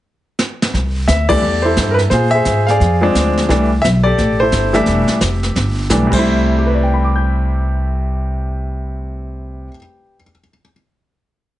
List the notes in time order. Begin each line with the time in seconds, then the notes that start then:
0.39 snare
0.62 snare
0.74 C2, brush sweep, kick, snare
1.08 D2 E5, kick, snare, hi-hat pedal
1.29 E3 G3 A3 D4 G4 A4 D5, kick, ride
1.42 E2, brush sweep
1.62 E4 A4 C5
1.76 G2, kick, snare, hi-hat pedal
1.91 A#4 B4
1.98 snare
2.10 A#2 F4 G#4 C5, brush sweep, kick, snare
2.31 G#4 E5
2.35 C5
2.45 G#2, kick, snare, hi-hat pedal
2.67 G#4 D5 F5, snare
2.80 F2, brush sweep, kick, snare
3.01 F3 G#3 C4 D4
3.15 D2, kick, snare, hi-hat pedal
3.38 snare
3.49 C2 E3 G3 A3 D4, brush sweep, kick, snare
3.82 B1 E5, kick, snare, hi-hat pedal
4.03 G4 A4 D5
4.18 A1, brush sweep, kick, snare
4.40 E4 A4 C5
4.52 G1, kick, snare, hi-hat pedal
4.73 E3 G3 A3 D4 G4 A4 E5, snare
4.86 E1, brush sweep, kick, snare
5.08 muted upright bass stroke, snare
5.21 F1, kick, snare, hi-hat pedal
5.43 snare
5.55 G1, brush sweep, kick, snare
5.90 B1 E3 G3 A3 D4, kick, snare, hi-hat pedal
6.07 C3 G3
6.12 C2 A3 C5, kick, crash
6.19 E4
6.59 G4
6.66 B4
6.74 D5
6.83 G5
6.94 B5
7.04 D6
7.16 G6